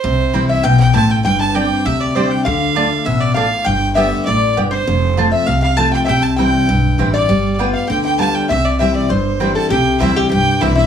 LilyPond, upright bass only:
\new Staff \with { instrumentName = "Upright bass" } { \clef bass \time 4/4 \key c \major \tempo 4 = 199 c,4 c,4 b,,4 a,,4 | g,,2 d,2 | d,2 a,,2 | g,,2 a,,4 g,,4 |
f,,2 c,2 | c,2 b,,4 a,,4 | g,,2 d,2 | c,2 g,,2 |
c,4 d,4 c,4 b,,4 | }